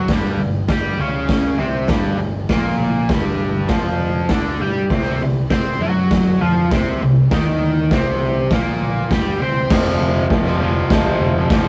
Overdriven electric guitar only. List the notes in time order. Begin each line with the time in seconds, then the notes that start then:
0.12 G2 G3
0.41 G2
0.70 G3 G4
0.99 C#3 C#4
1.58 C3 C4
1.89 G2 G3
2.19 G2
2.50 A#2 A#3
3.09 G2 G3
3.69 F2 F3
4.30 D3 D4
4.61 G3 G4
4.91 C3 C4
5.22 C3
5.51 C4 C5
5.81 F#3 F#4
6.41 F3 F4
6.71 C3 C4
7.02 C3
7.32 D#3 D#4
7.92 C3 C4
8.53 A#2 A#3
9.11 G3 G4
9.42 C4 C5
9.71 F2 C3 F3
10.31 F2 C3 F3
10.60 F2 C3 F3
10.91 F2 C3 F3
11.51 F2 C3 F3